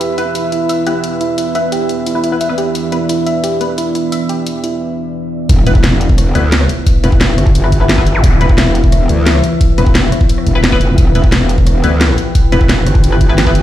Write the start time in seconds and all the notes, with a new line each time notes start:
Already playing: E3 B3 E4 B4 E5
0.01 G4 D5, closed hi-hat
0.18 B3 E4 B4, closed hi-hat
0.35 E4, closed hi-hat
0.52 E4, closed hi-hat
0.69 E5, closed hi-hat
0.87 B3 E4 G4 B4, closed hi-hat
1.04 closed hi-hat
1.21 E4, closed hi-hat
1.38 E4, closed hi-hat
1.55 B3 E4 B4 E5, closed hi-hat
1.72 G4, closed hi-hat
1.89 closed hi-hat
2.06 E4, closed hi-hat
2.15 B3 E4 B4
2.24 E4, closed hi-hat
2.32 B3 E4 B4
2.41 E5, closed hi-hat
2.49 B3 E4 B4
2.58 G4, closed hi-hat
2.75 closed hi-hat
2.92 B3 E4 B4, closed hi-hat
3.09 E4, closed hi-hat
3.26 E5, closed hi-hat
3.44 G4, closed hi-hat
3.61 B3 E4 B4, closed hi-hat
3.78 E4, closed hi-hat
3.95 E4, closed hi-hat
4.12 E5, closed hi-hat
4.29 G4, closed hi-hat
4.47 closed hi-hat
4.64 E4, closed hi-hat
5.49 E1 E3 B3 B4 E5, kick, closed hi-hat, impact
5.67 E1 B3 E4 B4, closed hi-hat
5.75 kick
5.84 E1, snare, closed hi-hat
6.01 closed hi-hat
6.09 kick
6.18 cross-stick, closed hi-hat
6.35 D2 B3 E4 B4, closed hi-hat
6.52 snare, closed hi-hat
6.61 cross-stick
6.69 closed hi-hat
6.87 kick, closed hi-hat
7.04 E1 B3 E4 B4, cross-stick, closed hi-hat
7.12 kick
7.21 E1, snare, closed hi-hat
7.38 G1, cross-stick, closed hi-hat
7.47 kick
7.55 closed hi-hat
7.64 B3 E4 B4, cross-stick
7.72 kick, closed hi-hat
7.81 B3 E4 B4
7.89 snare, closed hi-hat
7.98 B3 E4 B4, kick
8.07 closed hi-hat
8.15 zap
8.24 E1, kick, closed hi-hat
8.41 E1 B3 E4 B4, closed hi-hat
8.49 kick
8.58 E1, snare, closed hi-hat
8.75 closed hi-hat
8.84 kick
8.92 cross-stick, closed hi-hat
9.09 D2, closed hi-hat
9.26 snare, closed hi-hat
9.35 cross-stick
9.44 closed hi-hat
9.61 kick, closed hi-hat
9.78 E1 B3 E4 B4, cross-stick, closed hi-hat
9.86 kick
9.95 E1, snare, closed hi-hat
10.12 cross-stick, closed hi-hat
10.21 kick
10.29 closed hi-hat
10.38 cross-stick
10.46 E1, kick, closed hi-hat
10.55 B3 E4 B4
10.64 snare, closed hi-hat
10.72 B3 E4 B4, kick
10.81 F1, closed hi-hat
10.98 E1 G5, kick, closed hi-hat
11.15 E1 B3 E4 B4, closed hi-hat
11.24 kick
11.32 E1, snare, closed hi-hat
11.49 closed hi-hat
11.58 kick
11.67 cross-stick, closed hi-hat
11.84 D2 B3 E4 B4, closed hi-hat
12.01 snare, closed hi-hat
12.09 cross-stick
12.18 closed hi-hat
12.35 kick, closed hi-hat
12.52 E1 B3 E4 B4, cross-stick, closed hi-hat
12.61 kick
12.69 E1, snare, closed hi-hat
12.87 G1, cross-stick, closed hi-hat
12.95 kick
13.04 closed hi-hat
13.12 B3 E4 B4, cross-stick
13.21 kick, closed hi-hat
13.29 B3 E4 B4
13.38 snare, closed hi-hat
13.47 B3 E4 B4, kick
13.55 closed hi-hat